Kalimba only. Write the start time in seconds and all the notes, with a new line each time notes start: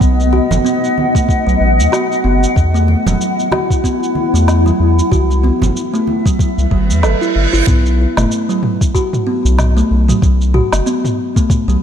0.33 F#4
0.65 B3
1.15 A3
1.47 F#3
1.92 F#4
2.24 B3
2.74 A3
3.07 F#3
3.52 F#4
3.84 B3
4.34 A3
4.66 F#3
5.11 F#4
5.43 B3
5.94 A3
6.25 F#3
6.71 F#3
7.03 A4
7.21 E4
7.53 E4
7.67 B3
8.17 A3
8.49 F#3
8.95 F#4
9.27 B3
9.77 A3
10.08 F#3
10.54 F#4
10.86 B3
11.36 A3
11.68 F#3